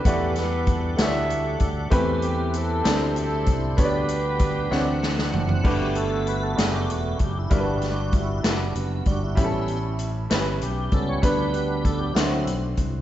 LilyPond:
<<
  \new Staff \with { instrumentName = "Grand piano" } { \time 6/8 \key g \major \tempo 4. = 64 <a g' d'' fis''>4 r8 <a g' cis'' d'' fis''>4 r8 | <a c' g' b'>4 r8 <c' e' g' d''>4 r8 | <b d' g' cis'' d''>4 r8 <c' e' cis'' d'' fis''>4 r8 | <g d' fis' b'>4 r8 <g d' fis' aes' a'>4 r8 |
<g d' e' bes' b'>4 r8 <g d' e' fis'>4 r8 | <g cis' e' g' a'>4 r8 <g cis' e' b'>4 r8 | <g b d' b'>4 r8 <a d' fis' c''>4 r8 | }
  \new Staff \with { instrumentName = "Grand piano" } { \clef bass \time 6/8 \key g \major e4. r4. | e4. d4. | d4. d4. | g,4. r4. |
g,4. r4. | a,4. r4. | d4. d4. | }
  \new Staff \with { instrumentName = "Horn section" } { \time 6/8 \key g \major << { <b b'>8 <b b'>4 <e' e''>4 r8 | r8 <g g'>8 <a a'>4 <a a'>4 | <b b'>2~ <b b'>8 r8 | r2. |
r2. | r2. | r2. | } \\ { <d' g'>8 <d' g'>4 <g' a'>4. | r4 <c' e'>4 <c' e'>4 | <d' g'>2~ <d' g'>8 r8 | r2. |
r2. | r2. | r2. | } >> }
  \new Staff \with { instrumentName = "Tonewheel organ" } { \time 6/8 \key g \major <g d' a' fis''>2. | <a c' g' b'>4. <g d' e' c''>4. | <g b d' b'>4. <e c' d' fis''>4. | g'8 a'8 b'16 a'16 g'8 r8 g'16 e'16 |
r4 e'8 d'8 b8 r16 e'16~ | e'4~ e'16 r8. g'8 a'16 cis''16 | b'8 b'8 a'16 g'16 fis'8 r4 | }
  \new Staff \with { instrumentName = "Tonewheel organ" } { \time 6/8 \key g \major r2. | r2. | r2. | <a b fis'>2 <a b fis'>8 r8 |
<g d' fis'>4. r4 <g d' fis'>8 | <g b cis'>8 r2 <g b cis'>8 | <g b d'>4. <fis c' e'>8 r4 | }
  \new Staff \with { instrumentName = "Fingered electric bass" } { \clef bass \time 6/8 \key g \major e,4. d,4 d,8 | e,4. d,4 c,8 | d,4. d,4 fis,,8 | g,,4. fis,,8 e,,8 fis,,8 |
g,,4. fis,,8 fis,,8 g,,8 | a,,4. g,,8 b,,8 cis,8 | d,4. d,8 b,,8 c,8 | }
  \new DrumStaff \with { instrumentName = "Drums" } \drummode { \time 6/8 <hh bd>8 <hh sn>8 <hh bd>8 <hh sn>8 hh8 <hh bd>8 | <hh bd>8 hh8 hh8 <hh sn>8 hh8 <hh bd>8 | <hh bd>8 hh8 <hh bd>8 sn8 sn16 sn16 tomfh16 tomfh16 | <cymc bd>8 hh8 hh8 <hh sn>8 hh8 <hh bd>8 |
<hh bd>8 <hh sn>8 <hh bd>8 <hh sn>8 hh8 <hh bd>8 | <hh bd>8 hh8 hh8 <hh sn>8 hh8 <hh bd>8 | <hh bd>8 hh8 <hh bd>8 <hh sn>8 hh8 <hh bd>8 | }
>>